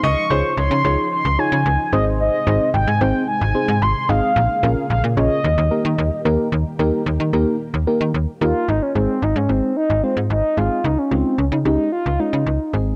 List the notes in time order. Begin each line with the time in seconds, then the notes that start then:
Already playing: D#4
0.03 C#2 C#3 F3 D#5 C#6
0.30 C#2 D#4 F4 G#4 C5 C#5
0.57 C#2 C#5 C6
0.71 C#3
0.84 C#2 D#4 F4 G#4 C#5
1.12 C6
1.25 C#2
1.39 D#4 F4 G#4 C#5 G#5
1.52 C#3
1.66 C#2
1.93 G#1 C3 G#3 C4 D#4 G#4 C5 D#5
2.20 D#5
2.47 G#1 C4 D#4 G#4 C5
2.74 G#1 G5
2.87 G#2 G#5
3.01 G#1 C4 D#4 G#4 C5 G5
3.28 G#5
3.41 G#1
3.55 C4 D#4 G#4 C5
3.68 G#2
3.82 G#1 C6
4.09 G#1 C4 D#4 G#4 D#5 F5
4.36 A#1 C#3 A#3 G#4
4.63 A#1 C#4 F4 G#4 A#4
4.90 A#1 F5
5.04 A#2
5.17 A#1 C#4 F4 G#4 C#5 D#5
5.44 D#2 D#3 G4
5.58 D#2
5.71 A#3 D#4 G4 A#4
5.85 D#3
5.98 D#2
6.25 D#2 A#3 D#4 G4 A#4
6.52 D#2 D#3 A#3 G4
6.79 D#2 A#3 D#4 G4 A#4
7.06 D#2
7.20 D#3
7.33 D#2 A#3 D#4 G4 A#4
7.74 D#2
7.87 A#3 D#4 G4 A#4
8.01 D#3
8.14 D#2
8.41 D#2 A#3 D#4 F4 G4 A#4
8.68 G#1 D#4
8.82 C#4
8.95 G#1 G#3 C4 D#4 G#4
9.22 G#1 D#4
9.36 G#2 C#4
9.49 G#1 G#3 C4 D#4 G#4
9.77 D#4
9.90 G#1
10.04 G#3 C4 D#4 F4
10.17 G#2
10.30 G#1 D#4
10.57 G#1 G#3 C4 D#4 F4 G#4
10.84 C#2 D#4
10.98 C#4
11.11 C#2 G#3 C4 C#4 D#4 F4
11.38 C#2 C#4
11.52 C#3 D#4
11.65 C#2 G#3 C#4 D#4 G4
11.92 F4
12.06 C#2
12.19 G#3 C#4 D#4 F4
12.33 C#3
12.46 C#2
12.73 G#1 G#3 C4 D#4 G#4